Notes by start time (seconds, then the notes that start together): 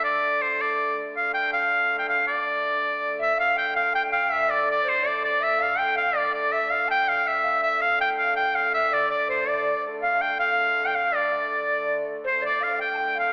Already playing: D3 A3
0.04 D5
0.42 C5
0.61 D5
1.16 F5
1.34 G5
1.53 F5
1.99 G5
2.09 F5
2.27 D5
3.19 E5
3.36 D3 A3 F5
3.57 G5
3.75 F5
3.93 G5
4.12 F5
4.30 E5 F5
4.34 E5
4.48 D5
4.71 D5
4.84 C5
4.89 C5
5.03 D5
5.22 D5
5.41 E5
5.58 F5
5.77 G5
5.96 F5
6.13 D5
6.34 D5
6.52 E5
6.70 F5
6.88 G5 A5
7.09 F5
7.25 E5
7.43 F5
7.59 E5
7.79 D3 A3 F5
8.00 G5
8.17 F5
8.36 G5
8.54 F5
8.72 E5
8.91 D5
9.09 D5
9.28 C5
9.45 D5
10.02 F5
10.22 G5
10.39 F5
10.85 G5
10.93 F5
11.12 D5
12.24 D3 A3 C5
12.42 D5
12.46 D5
12.61 F5
12.79 G5
12.94 G5 A5
13.16 F5